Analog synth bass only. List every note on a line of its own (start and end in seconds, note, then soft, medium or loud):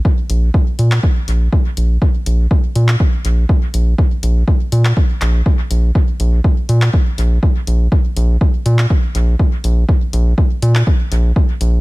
0.30 0.50 A#1 loud
0.79 0.99 A#2 loud
1.28 1.48 A#1 medium
1.77 1.98 A#1 medium
2.26 2.47 A#1 medium
2.75 2.96 A#2 loud
3.25 3.45 A#1 medium
3.74 3.94 A#1 medium
4.23 4.43 A#1 loud
4.72 4.93 A#2 loud
5.21 5.42 A#1 medium
5.71 5.91 A#1 medium
6.20 6.40 A#1 loud
6.69 6.89 A#2 loud
7.18 7.39 A#1 loud
7.67 7.88 A#1 medium
8.16 8.37 A#1 loud
8.66 8.86 A#2 loud
9.15 9.35 A#1 medium
9.64 9.84 A#1 medium
10.13 10.34 A#1 loud
10.62 10.83 A#2 loud
11.12 11.32 A#1 medium
11.61 11.81 A#1 medium